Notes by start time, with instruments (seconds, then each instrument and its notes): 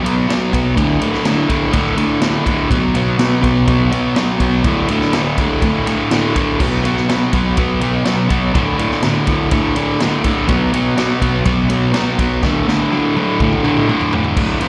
0.03 overdriven electric guitar B2 F#3 B3, ride
0.27 overdriven electric guitar B2 F#3 B3, snare, ride
0.52 overdriven electric guitar B2 F#3 B3, kick, ride
0.76 overdriven electric guitar D2 A2 D3, kick, ride
1.00 overdriven electric guitar D2 A2 D3, ride
1.14 snare
1.24 overdriven electric guitar D2 A2 D3, snare, ride
1.48 overdriven electric guitar D2 A2 D3, kick, ride
1.71 overdriven electric guitar D2 A2 D3, kick, ride
1.96 overdriven electric guitar D2 A2 D3, ride
2.20 overdriven electric guitar D2 A2 D3, snare, ride
2.45 overdriven electric guitar D2 A2 D3, kick, ride
2.69 overdriven electric guitar B2 F#3 B3, kick, ride
2.94 overdriven electric guitar B2 F#3 B3, ride
3.18 overdriven electric guitar B2 F#3 B3, snare, ride
3.41 overdriven electric guitar B2 F#3 B3, kick, ride
3.67 overdriven electric guitar B2 F#3 B3, kick, ride
3.92 overdriven electric guitar B2 F#3 B3, ride
4.16 overdriven electric guitar B2 F#3 B3, snare, ride
4.40 overdriven electric guitar B2 F#3 B3, kick, ride
4.64 overdriven electric guitar D2 A2 D3, kick, ride
4.88 overdriven electric guitar D2 A2 D3, ride
5.01 snare
5.13 overdriven electric guitar D2 A2 D3, snare, ride
5.38 overdriven electric guitar D2 A2 D3, kick, ride
5.62 overdriven electric guitar D2 A2 D3, kick, ride
5.86 overdriven electric guitar D2 A2 D3, ride
6.11 overdriven electric guitar D2 A2 D3, snare, ride
6.36 overdriven electric guitar D2 A2 D3, kick, ride
6.60 overdriven electric guitar B2 F#3 B3, kick, crash
6.84 overdriven electric guitar B2 F#3 B3, ride
6.97 snare
7.09 overdriven electric guitar B2 F#3 B3, snare, ride
7.32 overdriven electric guitar B2 F#3 B3, kick, ride
7.57 overdriven electric guitar B2 F#3 B3, kick, ride
7.80 overdriven electric guitar B2 F#3 B3, ride
8.05 overdriven electric guitar B2 F#3 B3, snare, ride
8.29 overdriven electric guitar B2 F#3 B3, kick, ride
8.53 overdriven electric guitar D2 A2 D3, kick, ride
8.78 overdriven electric guitar D2 A2 D3, ride
8.91 snare
9.02 overdriven electric guitar D2 A2 D3, snare, ride
9.27 overdriven electric guitar D2 A2 D3, kick, ride
9.51 overdriven electric guitar D2 A2 D3, kick, ride
9.76 overdriven electric guitar D2 A2 D3, ride
10.00 overdriven electric guitar D2 A2 D3, snare, ride
10.24 overdriven electric guitar D2 A2 D3, kick, ride
10.48 overdriven electric guitar B2 F#3 B3, kick, ride
10.72 overdriven electric guitar B2 F#3 B3, ride
10.95 overdriven electric guitar B2 F#3 B3, snare, ride
11.20 overdriven electric guitar B2 F#3 B3, kick, ride
11.45 overdriven electric guitar B2 F#3 B3, kick, ride
11.69 overdriven electric guitar B2 F#3 B3, ride
11.93 overdriven electric guitar B2 F#3 B3, snare, ride
12.19 overdriven electric guitar B2 F#3 B3, kick, ride
12.43 overdriven electric guitar D2 A2 D3, kick, snare
12.66 overdriven electric guitar D2 A2 D3, snare
12.90 overdriven electric guitar D2 A2 D3, high tom
13.16 overdriven electric guitar D2 A2 D3, high tom
13.40 overdriven electric guitar D2 A2 D3, kick, mid tom
13.52 mid tom
13.63 overdriven electric guitar D2 A2 D3, mid tom
13.76 mid tom
13.88 overdriven electric guitar D2 A2 D3, mid tom
14.01 floor tom
14.13 overdriven electric guitar D2 A2 D3, floor tom
14.24 floor tom
14.36 overdriven electric guitar D2 A2 D3, kick, crash
14.60 overdriven electric guitar F2 C3 F3, crash